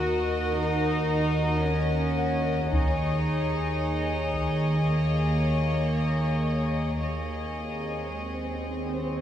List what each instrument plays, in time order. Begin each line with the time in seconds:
Already playing: double bass section D#2, cello section F#4, violin section F#4 A#4 D#5
0.58 cello section D#4
1.65 cello section C#4
2.19 grand piano F#5
2.72 double bass section D#2, cello section D#4, violin section G#4 C#5 D#5, taiko
4.33 taiko
4.86 cello section A#3
7.00 double bass section D#2, cello section A#3, violin section G#4 C#5 D#5, swell
8.08 cello section G#3